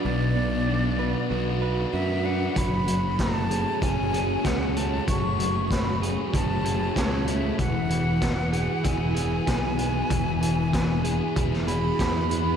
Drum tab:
HH |----------------|x-x-x-x-x-x-x-x-|x-x-x-x-x-x-x-x-|x-x-x-x-x-x-x-x-|
SD |----------------|----o-------o---|----o-------o---|----o-------o---|
BD |----------------|o---o---o---o---|o---o---o---o---|o---o---o---o---|

HH |x-x-x-x-x-x-x-x-|
SD |----o----o--o---|
BD |o---o---o---o---|